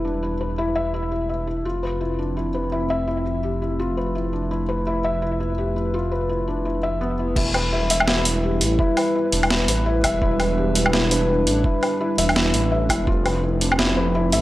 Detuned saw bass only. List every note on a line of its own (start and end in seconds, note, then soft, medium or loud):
0.00 1.63 E1 medium
1.65 7.35 F1 medium
7.36 8.62 E1 medium
8.61 8.78 A1 loud
9.32 9.67 E1 medium
9.68 10.05 A1 loud
10.04 10.21 E1 loud
10.22 11.48 E1 loud
11.47 11.63 A1 loud
12.18 12.53 E1 medium
12.54 12.91 A1 loud
12.89 13.06 E1 loud
13.07 14.34 F1 medium
14.32 14.41 A1 loud